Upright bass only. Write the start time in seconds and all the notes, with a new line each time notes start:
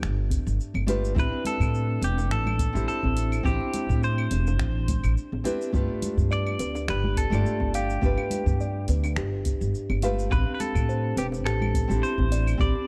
0.02 G1
0.47 G1
0.74 G1
1.16 A1
1.60 A2
2.02 E1
2.31 A1
2.75 A1
3.03 A1
3.45 A1
3.89 A2
4.31 E1
4.59 A1
5.04 A1
5.32 A1
5.74 G1
6.18 G2
6.59 D2
6.88 G1
7.32 G1
7.61 G1
8.03 G1
8.46 G2
8.88 D2
9.17 G1
9.61 G1
9.90 G1
10.31 A1
10.75 A2
11.17 E1
11.45 A1
11.90 A1
12.18 A1
12.60 A1